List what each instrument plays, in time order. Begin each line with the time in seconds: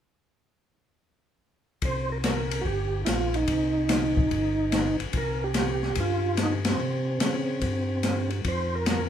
1.82 tonewheel organ C2 C5, kick, ride
2.12 tonewheel organ A#4
2.24 tonewheel organ A#4, snare, hi-hat pedal, ride
2.51 ride
2.61 tonewheel organ F#4
2.65 tonewheel organ G1 G4, kick
3.05 tonewheel organ A#1 E4 F4, snare, hi-hat pedal, ride
3.34 tonewheel organ D#4, ride
3.48 tonewheel organ C2, kick, ride
3.89 snare, hi-hat pedal, ride
4.17 kick
4.31 tonewheel organ G1, kick, ride
4.72 snare, hi-hat pedal, ride
5.00 tonewheel organ G1, ride
5.13 tonewheel organ C2, kick, ride
5.17 tonewheel organ A#4
5.44 tonewheel organ G4
5.54 snare, hi-hat pedal, ride
5.59 tonewheel organ G4
5.82 snare
5.95 tonewheel organ G2, kick, ride
6.00 tonewheel organ F4
6.37 snare, hi-hat pedal, ride
6.43 tonewheel organ D#4
6.65 snare, ride
6.70 tonewheel organ C4
6.80 tonewheel organ C3
7.20 tonewheel organ C#3, snare, hi-hat pedal, ride
7.61 tonewheel organ G2, kick, ride
8.03 snare, hi-hat pedal, ride
8.30 ride
8.44 tonewheel organ F2 C5, kick, ride
8.75 tonewheel organ A#4
8.86 tonewheel organ A#4, snare, hi-hat pedal, ride